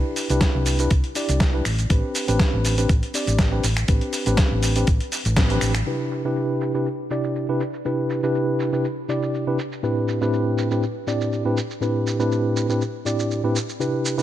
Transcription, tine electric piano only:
0.00 0.26 D4 medium
0.00 0.27 E4 medium
0.00 0.27 G4 medium
0.00 0.27 B4 medium
0.30 0.76 D4 medium
0.30 0.76 E4 medium
0.30 0.76 G4 medium
0.30 0.77 B4 loud
0.79 0.92 D4 medium
0.79 0.92 E4 medium
0.79 0.92 G4 medium
0.79 0.92 B4 medium
1.15 1.50 D4 medium
1.15 1.51 E4 medium
1.15 1.51 G4 medium
1.15 1.51 D5 medium
1.53 1.64 D4 medium
1.53 1.64 E4 medium
1.53 1.64 G4 medium
1.53 1.64 B4 loud
1.90 2.25 C4 medium
1.90 2.25 D4 medium
1.90 2.25 G4 medium
1.90 2.25 B4 medium
2.27 2.74 C4 loud
2.27 2.74 D4 medium
2.27 2.75 G4 medium
2.27 2.75 B4 loud
2.77 2.90 C4 medium
2.77 2.90 D4 medium
2.77 2.90 G4 medium
2.77 2.90 B4 medium
3.14 3.49 C4 medium
3.14 3.49 D4 medium
3.14 3.49 G4 medium
3.14 3.49 D5 medium
3.52 3.64 C4 medium
3.52 3.65 D4 medium
3.52 3.65 G4 medium
3.52 3.65 B4 loud
3.88 4.23 C4 medium
3.88 4.23 D4 medium
3.88 4.23 G4 medium
3.88 4.24 B4 loud
4.26 4.73 C4 medium
4.26 4.73 D4 medium
4.26 4.73 G4 medium
4.26 4.73 B4 loud
4.76 4.88 C4 medium
4.76 4.89 D4 medium
4.76 4.89 G4 medium
4.76 4.89 B4 medium
5.37 5.48 C4 medium
5.37 5.48 D4 medium
5.37 5.49 G4 medium
5.37 5.49 B4 loud
5.50 5.71 C4 medium
5.50 5.72 D4 medium
5.50 5.72 G4 medium
5.50 5.72 B4 loud
5.86 6.21 C3 medium
5.86 6.22 D4 medium
5.86 6.22 E4 medium
5.86 6.22 G4 medium
5.86 6.22 B4 medium
6.24 6.71 C3 medium
6.24 6.71 D4 medium
6.24 6.71 E4 medium
6.24 6.71 G4 medium
6.24 6.72 B4 medium
6.74 6.87 C3 medium
6.74 6.87 D4 medium
6.74 6.87 E4 medium
6.74 6.87 G4 medium
6.74 6.87 B4 medium
7.11 7.46 C3 medium
7.11 7.46 D4 medium
7.11 7.46 E4 medium
7.11 7.46 G4 medium
7.11 7.46 D5 medium
7.49 7.61 C3 medium
7.49 7.61 D4 medium
7.49 7.61 E4 medium
7.49 7.62 G4 medium
7.49 7.62 B4 medium
7.85 8.20 C3 medium
7.85 8.20 D4 medium
7.85 8.20 E4 medium
7.85 8.20 G4 medium
7.85 8.20 B4 medium
8.23 8.69 C3 medium
8.23 8.70 D4 medium
8.23 8.70 E4 medium
8.23 8.70 G4 medium
8.23 8.70 B4 medium
8.72 8.85 C3 medium
8.72 8.85 D4 medium
8.72 8.85 E4 medium
8.72 8.85 G4 medium
8.72 8.86 B4 medium
9.08 9.44 C3 medium
9.08 9.44 D4 medium
9.08 9.44 E4 medium
9.08 9.44 G4 medium
9.08 9.44 D5 medium
9.47 9.57 C3 medium
9.47 9.57 D4 medium
9.47 9.57 E4 medium
9.47 9.57 G4 medium
9.47 9.58 B4 medium
9.83 10.18 A2 medium
9.83 10.18 C4 medium
9.83 10.18 D4 medium
9.83 10.18 E4 medium
9.83 10.18 G4 medium
9.83 10.18 B4 medium
10.21 10.68 A2 medium
10.21 10.68 C4 medium
10.21 10.68 D4 medium
10.21 10.68 E4 medium
10.21 10.68 G4 medium
10.21 10.68 B4 medium
10.71 10.83 A2 medium
10.71 10.84 C4 medium
10.71 10.84 D4 medium
10.71 10.84 E4 medium
10.71 10.84 G4 medium
10.71 10.84 B4 medium
11.07 11.42 A2 medium
11.07 11.42 C4 medium
11.07 11.42 D4 medium
11.07 11.42 E4 medium
11.07 11.42 G4 medium
11.07 11.42 D5 medium
11.45 11.58 A2 medium
11.45 11.58 C4 medium
11.45 11.58 D4 medium
11.45 11.58 E4 medium
11.45 11.58 G4 medium
11.45 11.58 B4 medium
11.81 12.16 A2 medium
11.81 12.16 C4 medium
11.81 12.16 D4 medium
11.81 12.17 E4 medium
11.81 12.17 G4 medium
11.81 12.17 B4 medium
12.19 12.66 A2 medium
12.19 12.66 C4 medium
12.19 12.66 D4 medium
12.19 12.66 E4 medium
12.19 12.66 G4 medium
12.19 12.66 B4 medium
12.69 12.82 A2 medium
12.69 12.82 C4 medium
12.69 12.82 D4 medium
12.69 12.82 E4 medium
12.69 12.82 G4 medium
12.69 12.82 B4 medium
13.05 13.40 A2 medium
13.05 13.40 C4 medium
13.05 13.40 D4 medium
13.05 13.41 E4 medium
13.05 13.41 G4 medium
13.05 13.41 D5 medium
13.43 13.56 A2 medium
13.43 13.56 C4 medium
13.43 13.56 D4 medium
13.43 13.57 E4 medium
13.43 13.57 G4 medium
13.43 13.57 B4 medium
13.79 14.15 C3 medium
13.79 14.15 D4 medium
13.79 14.15 E4 medium
13.79 14.15 G4 medium
13.79 14.15 B4 medium
14.17 14.23 C3 medium
14.17 14.23 D4 medium
14.17 14.23 E4 medium
14.17 14.23 G4 medium
14.17 14.23 B4 medium

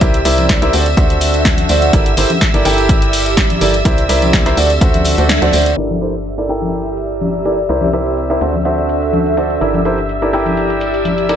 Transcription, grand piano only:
0.01 0.19 E4 medium
0.01 0.18 G4 medium
0.01 0.18 A#4 medium
0.01 0.19 C5 medium
0.01 0.18 E5 loud
0.25 0.59 E4 medium
0.25 0.59 G4 medium
0.25 0.59 A#4 medium
0.25 0.59 C5 medium
0.25 0.59 E5 loud
0.62 0.72 E4 medium
0.62 0.72 G4 medium
0.62 0.72 A#4 medium
0.62 0.72 C5 medium
0.62 0.72 E5 loud
0.73 0.84 D4 medium
0.73 0.84 F#4 medium
0.73 0.84 A4 medium
0.73 0.84 C5 medium
0.73 0.84 D5 medium
0.97 1.67 D4 medium
0.97 1.67 F#4 medium
0.97 1.67 A4 medium
0.97 1.67 C5 medium
0.97 1.67 E5 medium
1.69 1.91 D4 medium
1.69 1.91 F#4 medium
1.69 1.91 A4 medium
1.69 1.91 C5 medium
1.69 1.91 D5 medium
1.93 2.11 E4 medium
1.93 2.11 G4 medium
1.93 2.11 A4 medium
1.93 2.11 A#4 medium
1.93 2.11 D5 medium
2.17 2.28 E4 medium
2.17 2.28 G4 medium
2.17 2.28 A4 medium
2.17 2.28 A#4 medium
2.17 2.28 C5 medium
2.54 2.63 E4 medium
2.54 2.63 G4 medium
2.54 2.63 A4 medium
2.54 2.63 A#4 medium
2.54 2.63 D5 medium
2.65 3.59 E4 loud
2.65 3.59 G4 medium
2.65 3.59 A4 medium
2.65 3.59 A#4 medium
2.65 3.59 G5 loud
3.61 3.72 E4 medium
3.61 3.72 G4 medium
3.61 3.72 A4 medium
3.61 3.72 A#4 medium
3.61 3.72 D5 medium
3.85 4.03 E4 medium
3.85 4.03 G4 medium
3.85 4.03 A#4 medium
3.85 4.03 C5 medium
3.85 4.03 E5 loud
4.09 4.43 E4 medium
4.09 4.43 G4 medium
4.09 4.43 A#4 medium
4.09 4.43 C5 medium
4.09 4.43 E5 loud
4.46 4.56 E4 medium
4.46 4.56 G4 medium
4.46 4.56 A#4 medium
4.46 4.56 C5 medium
4.46 4.56 E5 loud
4.57 4.68 D4 medium
4.57 4.68 F#4 medium
4.57 4.68 A4 medium
4.57 4.68 C5 medium
4.57 4.68 D5 medium
4.81 5.15 D4 medium
4.81 5.15 F#4 medium
4.81 5.15 A4 medium
4.81 5.15 C5 medium
4.81 5.15 E5 medium
5.18 5.28 D4 medium
5.18 5.28 F#4 medium
5.18 5.28 A4 medium
5.18 5.28 C5 medium
5.18 5.28 D5 medium
5.42 5.52 D4 medium
5.42 5.51 F#4 medium
5.42 5.52 A4 medium
5.42 5.51 C5 medium
5.42 5.51 D5 loud
5.53 5.70 D4 medium
5.53 5.70 F#4 medium
5.53 5.70 A4 medium
5.53 5.70 C5 medium
5.53 5.70 D5 medium
5.77 5.95 E4 medium
5.77 5.94 G4 medium
5.77 5.94 A4 medium
5.77 5.95 A#4 medium
6.01 6.12 E4 medium
6.01 6.12 G4 medium
6.01 6.12 A4 medium
6.01 6.12 A#4 medium
6.01 6.12 C5 medium
6.38 6.47 E4 medium
6.38 6.47 G4 medium
6.38 6.47 A4 medium
6.38 6.47 A#4 medium
6.38 6.47 D5 medium
6.49 7.43 E4 medium
6.49 7.43 G4 medium
6.49 7.43 A4 medium
6.49 7.43 A#4 medium
6.49 7.43 G5 loud
7.45 7.56 E4 medium
7.45 7.56 G4 medium
7.45 7.56 A4 medium
7.45 7.56 A#4 medium
7.45 7.56 D5 medium
7.69 7.87 E4 medium
7.69 7.87 G4 medium
7.69 7.87 A#4 medium
7.69 7.86 C5 medium
7.69 7.86 E5 medium
7.93 8.27 E4 medium
7.93 8.27 G4 medium
7.93 8.27 A#4 medium
7.93 8.27 C5 medium
7.93 8.27 E5 medium
8.30 8.40 E4 medium
8.30 8.39 G4 medium
8.30 8.40 A#4 medium
8.30 8.39 C5 medium
8.30 8.40 E5 medium
8.41 8.52 D4 medium
8.41 8.52 F#4 medium
8.41 8.52 A4 medium
8.41 8.52 C5 medium
8.41 8.52 D5 medium
8.65 9.35 D4 medium
8.65 9.34 F#4 medium
8.65 9.35 A4 medium
8.65 9.35 C5 medium
8.65 9.35 E5 medium
9.37 9.59 D4 medium
9.37 9.59 F#4 medium
9.37 9.59 A4 medium
9.37 9.59 C5 medium
9.37 9.59 D5 medium
9.61 9.79 E4 medium
9.61 9.79 G4 medium
9.61 9.79 A4 medium
9.61 9.79 A#4 medium
9.61 9.78 D5 medium
9.85 9.96 E4 medium
9.85 9.96 G4 medium
9.85 9.97 A4 medium
9.85 9.97 A#4 medium
9.85 9.97 C5 medium
10.22 10.31 E4 medium
10.22 10.31 G4 medium
10.22 10.31 A4 medium
10.22 10.31 A#4 medium
10.22 10.31 D5 medium
10.33 11.27 E4 medium
10.33 11.27 G4 medium
10.33 11.27 A4 medium
10.33 11.27 A#4 medium
10.33 11.27 G5 loud
11.29 11.36 E4 medium
11.29 11.36 G4 medium
11.29 11.36 A4 medium
11.29 11.36 A#4 medium
11.29 11.36 D5 medium

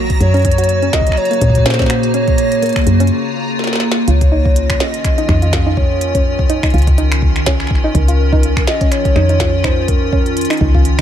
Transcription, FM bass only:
0.00 0.17 A#1 medium
0.21 0.90 F#2 loud
1.42 2.72 A#2 medium
2.87 3.11 F#2 loud
4.08 4.77 C#2 loud
5.29 6.59 F2 medium
6.74 7.72 C#2 loud
7.71 7.91 G#1 medium
7.95 8.64 C#2 loud
9.16 10.46 F2 medium
10.61 11.02 C#2 loud

